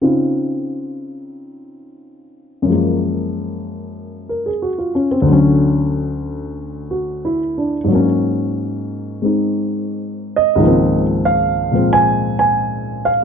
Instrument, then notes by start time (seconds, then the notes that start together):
grand piano
0.01 C#3 C4 D#4 F4
2.62 F#2 F3
2.70 G#3 A#3
4.29 A#4
4.46 G#4
4.62 F#4
4.78 F4
4.95 C#4
5.11 C4
5.22 D2
5.26 D3 F#3
5.33 C#4
6.91 F#4
7.25 E4
7.58 D4
7.84 G#2 F#3
7.91 A#3 C#4
9.22 G#3 C4 D#4
10.36 D#5
10.56 C#2 G#2
10.60 D#3 F3
10.64 A#3 C4
11.25 F5
11.71 A#2 F3 G#3 C4
11.93 G#5
12.39 G#5
13.05 F5